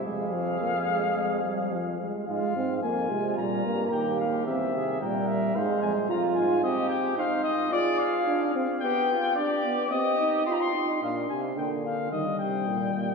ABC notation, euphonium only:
X:1
M:4/4
L:1/8
Q:1/4=110
K:Fm
V:1 name="Euphonium" clef=bass
F,,6- F,, z | A,, A,, F,, C, B,, G,, E,,2 | =E,, C, B,,2 A,, F,, F,, A,, | z8 |
z8 | B,, C, =D,2 E, C, B,, B,, |]